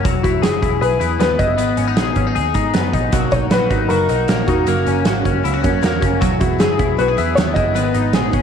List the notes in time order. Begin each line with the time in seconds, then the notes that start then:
0.05 E1 F#3, kick, closed hi-hat
0.23 E1 E4 F#4, kick, closed hi-hat
0.42 F#1 G#4, snare, closed hi-hat
0.62 E1 E4, kick, closed hi-hat
0.81 B1 G#4 B4, closed hi-hat
1.00 E2 E4, closed hi-hat
1.20 D#2 B3 B4, snare, closed hi-hat
1.39 F#1 E4 D#5, kick, closed hi-hat
1.58 G#1 B3, closed hi-hat
1.77 G#1 C#4, closed hi-hat
1.88 D#4
1.97 A#1 G#4, snare, closed hi-hat
2.15 G#1 C#4, kick, closed hi-hat
2.27 D#4
2.35 D#2 G#4, closed hi-hat
2.54 G#2 D#4, kick, closed hi-hat
2.74 F#2 B3, snare, closed hi-hat
2.93 A#1 D#4, kick, closed hi-hat
3.12 B1 B2 F#3 A#3 D#4 F#4, kick, closed hi-hat
3.31 B1 A#3 D#4 F#4 C#5, kick, closed hi-hat
3.50 A#1 B2 F#3 A#3 D#4 F#4 B4, snare, closed hi-hat
3.70 G#1 A#3 D#4 F#4, kick, closed hi-hat
3.89 F#1 F#3 A#3 D#4 F#4 A#4, closed hi-hat
4.07 B1 A#3 D#4 F#4, closed hi-hat
4.28 A#1 B2 F#3 A#3 D#4 F#4, snare, closed hi-hat
4.46 E1 A#3 D#4 F#4, kick, closed hi-hat
4.66 F#1 F#2 C#3 F#3 A#3 C#4 F#4, closed hi-hat
4.85 F#1 F#3 A#3 C#4 F#4, closed hi-hat
5.05 G#1 F#2 C#3 F#3 A#3 C#4 F#4, snare, closed hi-hat
5.24 F#1 F#3 A#3 C#4 F#4, kick, closed hi-hat
5.43 C#2 F#3 A#3 C#4 E4 F#4, closed hi-hat
5.54 F#4
5.62 F#2 F#3 A#3 C#4 F#4, kick, closed hi-hat
5.82 E2 F#2 C#3 F#3 A#3 C#4 F#4, snare, closed hi-hat
6.01 F#1 F#3 A#3 C#4 F#4, kick, closed hi-hat
6.21 E1 E3 F#3 B3 E4 G#4, kick, closed hi-hat
6.40 E1 B3 E4 F#4 G#4, kick, closed hi-hat
6.59 F#1 E3 F#3 B3 E4 G#4, snare, closed hi-hat
6.77 E1 B3 E4 G#4, kick, closed hi-hat
6.97 B1 F#3 B3 E4 F#4 G#4 B4, closed hi-hat
7.08 G#4
7.17 E2 B3 E4 G#4, closed hi-hat
7.35 D#2 E3 F#3 B3 E4 G#4 C#5, snare, closed hi-hat
7.54 F#1 E4 G#4 D#5, kick, closed hi-hat
7.58 B3
7.74 G#1 G#2 D#3 G#3 B3 D#4, closed hi-hat
7.93 G#1 G#3 B3 D#4, closed hi-hat
8.13 A#1 G#2 D#3 G#3 B3 D#4 G#4, snare, closed hi-hat
8.31 G#1 G#3 B3 C#4 D#4, kick, closed hi-hat